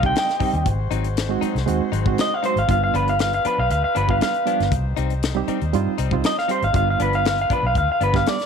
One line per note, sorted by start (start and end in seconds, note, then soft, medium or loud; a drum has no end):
0.00 0.12 C2 medium
0.00 0.26 G3 medium
0.00 0.26 C4 medium
0.00 0.26 D#4 medium
0.00 0.62 G4 medium
0.00 0.62 C5 medium
0.00 0.62 D#5 medium
0.00 kick medium
0.05 0.27 G4 medium
0.05 0.16 G5 medium
0.15 0.66 G5 loud
0.15 snare loud
0.15 closed hi-hat medium
0.28 snare soft
0.28 closed hi-hat soft
0.40 0.66 G3 medium
0.40 0.57 G3 medium
0.40 0.56 C4 medium
0.40 0.66 C4 medium
0.40 0.56 D#4 medium
0.40 0.66 D#4 medium
0.40 0.67 G4 medium
0.40 kick medium
0.40 open hi-hat medium
0.53 0.64 D#2 medium
0.53 closed hi-hat soft
0.65 0.89 G#1 loud
0.65 2.66 F#4 medium
0.65 2.66 G#4 medium
0.65 2.66 C5 medium
0.65 kick loud
0.65 closed hi-hat medium
0.91 1.36 G#1 medium
0.91 1.07 F#3 medium
0.91 1.07 C4 medium
0.91 1.07 D#4 medium
0.91 closed hi-hat medium
1.04 closed hi-hat soft
1.17 snare loud
1.17 closed hi-hat medium
1.29 1.52 G#3 medium
1.29 1.53 C4 medium
1.29 1.53 D#4 medium
1.29 1.53 F#4 medium
1.41 1.58 F#3 medium
1.41 1.58 C4 medium
1.41 1.57 D#4 medium
1.41 muted fingered electric bass stroke soft
1.41 closed hi-hat medium
1.55 1.66 C2 medium
1.55 snare soft
1.55 closed hi-hat soft
1.66 1.79 D#2 medium
1.66 1.90 G#3 loud
1.66 1.90 C4 medium
1.66 1.91 D#4 medium
1.66 1.91 F#4 loud
1.66 closed hi-hat medium
1.80 muted fingered electric bass stroke soft
1.92 2.15 G#1 medium
1.92 2.09 F#3 medium
1.92 2.08 C4 medium
1.92 2.08 D#4 medium
1.92 closed hi-hat medium
2.06 2.29 G#3 medium
2.06 2.29 C4 medium
2.06 2.29 D#4 medium
2.06 2.30 F#4 medium
2.06 kick medium
2.18 2.34 D#5 loud
2.18 snare loud
2.18 closed hi-hat medium
2.34 2.45 F5 loud
2.43 2.59 F#3 medium
2.43 2.59 G#3 medium
2.43 2.59 C4 medium
2.43 2.59 D#4 medium
2.43 2.60 F#4 medium
2.43 2.57 C5 medium
2.43 closed hi-hat medium
2.56 2.67 G#1 medium
2.56 2.69 F5 medium
2.56 closed hi-hat soft
2.68 2.91 G1 loud
2.68 3.30 G3 medium
2.68 3.30 B3 medium
2.68 3.31 D4 medium
2.68 3.31 F4 medium
2.68 4.70 F4 medium
2.68 8.46 G4 medium
2.68 4.70 B4 medium
2.68 2.83 F5 medium
2.68 kick medium
2.68 closed hi-hat medium
2.84 2.95 F5 medium
2.94 3.39 G1 medium
2.94 3.10 F3 medium
2.94 3.10 B3 medium
2.94 3.10 D4 medium
2.94 3.08 B4 medium
2.94 closed hi-hat soft
3.08 3.20 F5 medium
3.08 closed hi-hat soft
3.19 3.33 F5 medium
3.19 snare loud
3.19 closed hi-hat medium
3.33 3.45 F5 medium
3.33 closed hi-hat soft
3.45 3.61 F3 medium
3.45 3.61 B3 medium
3.45 3.60 D4 medium
3.45 3.58 B4 medium
3.45 muted fingered electric bass stroke soft
3.45 closed hi-hat medium
3.58 3.69 B1 medium
3.58 3.70 F5 loud
3.70 3.82 D2 loud
3.70 3.83 F5 loud
3.70 closed hi-hat medium
3.84 3.96 F5 medium
3.84 muted fingered electric bass stroke soft
3.95 4.18 G1 medium
3.95 4.12 F3 medium
3.95 4.11 B3 medium
3.95 4.11 D4 medium
3.95 4.09 B4 loud
3.95 closed hi-hat medium
4.08 4.31 G3 medium
4.08 4.31 B3 medium
4.08 4.32 D4 medium
4.08 4.32 F4 medium
4.08 4.21 F5 medium
4.08 kick medium
4.21 4.71 F5 loud
4.21 snare loud
4.21 closed hi-hat medium
4.34 closed hi-hat soft
4.46 4.63 F3 medium
4.46 4.71 G3 medium
4.46 4.71 B3 medium
4.46 4.62 B3 medium
4.46 4.72 D4 medium
4.46 4.62 D4 medium
4.46 4.72 F4 medium
4.46 closed hi-hat medium
4.60 4.71 G1 medium
4.60 snare soft
4.60 closed hi-hat soft
4.71 4.94 C2 loud
4.71 6.72 D#4 medium
4.71 6.72 C5 medium
4.71 kick loud
4.71 closed hi-hat medium
4.97 5.42 C2 medium
4.97 5.13 G3 medium
4.97 5.13 C4 medium
4.97 5.12 D#4 medium
4.97 closed hi-hat medium
5.10 closed hi-hat soft
5.23 snare loud
5.23 closed hi-hat medium
5.35 5.58 G3 medium
5.35 5.58 C4 medium
5.35 5.59 D#4 medium
5.35 5.59 G4 loud
5.48 5.64 G3 medium
5.48 5.64 C4 medium
5.48 5.63 D#4 medium
5.48 muted fingered electric bass stroke soft
5.48 closed hi-hat medium
5.61 5.72 D#2 medium
5.61 closed hi-hat soft
5.73 5.85 G2 loud
5.73 5.96 G3 loud
5.73 5.97 C4 medium
5.73 5.97 D#4 medium
5.73 5.97 F4 loud
5.73 closed hi-hat medium
5.87 muted fingered electric bass stroke soft
5.98 6.21 C2 medium
5.98 6.15 G3 medium
5.98 6.14 C4 medium
5.98 6.14 D#4 medium
5.98 closed hi-hat medium
6.11 6.34 G3 medium
6.11 6.35 C4 medium
6.11 6.35 D#4 medium
6.11 6.35 F4 loud
6.11 kick medium
6.24 6.38 D#5 loud
6.24 snare loud
6.24 closed hi-hat medium
6.38 6.50 F5 loud
6.38 snare soft
6.48 6.64 G3 medium
6.48 6.65 G3 medium
6.48 6.65 C4 medium
6.48 6.64 D#4 medium
6.48 6.65 D#4 medium
6.48 6.65 G4 medium
6.48 6.63 C5 medium
6.48 closed hi-hat medium
6.62 6.73 G#1 medium
6.62 6.75 F5 medium
6.62 closed hi-hat soft
6.73 6.97 G1 loud
6.73 7.36 G3 medium
6.73 7.36 B3 medium
6.73 7.36 D4 medium
6.73 8.46 F4 medium
6.73 7.36 F4 loud
6.73 8.46 B4 medium
6.73 6.88 F5 loud
6.73 kick loud
6.73 closed hi-hat medium
6.90 7.01 F5 medium
6.99 7.45 G1 loud
6.99 7.16 F3 medium
6.99 7.16 B3 medium
6.99 7.15 D4 medium
6.99 7.14 B4 medium
6.99 closed hi-hat medium
7.13 7.26 F5 loud
7.13 closed hi-hat soft
7.25 7.39 F5 medium
7.25 snare loud
7.25 closed hi-hat medium
7.38 7.52 F5 loud
7.38 closed hi-hat soft
7.50 7.67 F3 medium
7.50 7.66 B3 medium
7.50 7.66 D4 medium
7.50 7.64 B4 medium
7.50 muted fingered electric bass stroke soft
7.50 kick medium
7.50 closed hi-hat medium
7.63 7.74 B1 medium
7.63 7.77 F5 loud
7.75 7.87 D2 medium
7.75 7.89 F5 loud
7.75 kick medium
7.75 closed hi-hat medium
7.92 8.02 F5 medium
8.01 8.23 G1 loud
8.01 8.17 F3 medium
8.01 8.17 B3 medium
8.01 8.16 D4 medium
8.01 8.15 B4 medium
8.01 closed hi-hat medium
8.13 8.37 G3 medium
8.13 8.37 B3 medium
8.13 8.37 D4 medium
8.13 8.37 G4 medium
8.13 8.29 F5 medium
8.13 kick medium
8.13 snare soft
8.26 8.46 D5 medium
8.26 snare loud
8.26 closed hi-hat medium
8.39 snare soft
8.39 closed hi-hat soft